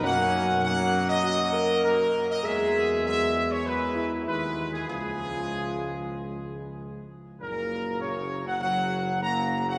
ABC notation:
X:1
M:4/4
L:1/16
Q:1/4=99
K:F#
V:1 name="Trumpet section"
f4 f3 d4- d A3 d | =e4 e3 c B4 B3 G | G12 z4 | A4 c3 f f4 a3 f |]
V:2 name="French horn section"
C8 F2 A6 | G8 F2 =E6 | E12- E2 z2 | A,,4 C,3 F, F,4 A,3 F, |]
V:3 name="Trombone section" clef=bass
[F,A,]4 [F,A,]8 [F,A,]4 | [F,G,]4 [F,G,]4 [F,G,]4 [F,G,]4 | [E,G,]12- [E,G,]2 z2 | [C,F,]16 |]
V:4 name="Tuba" clef=bass
F,,12- F,,2 z2 | =E,,12 D,,4 | C,,12- C,,2 z2 | F,,,16 |]